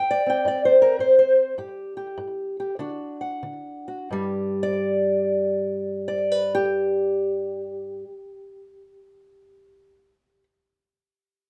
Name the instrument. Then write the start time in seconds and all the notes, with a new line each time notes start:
steel-string acoustic guitar
Already playing: G2 G5
0.11 D5
0.26 C4 G5
0.45 G2 D5
0.65 C5
0.82 A#4
0.99 G2 C5
1.19 C5
1.58 G2 G4
1.97 G4
2.18 G2
2.60 G4
2.79 D3 D4 F#4
3.21 F#5
3.43 D3
3.88 F#4
4.11 G2 G3
4.63 D5
6.08 D5
6.32 B4
6.55 G4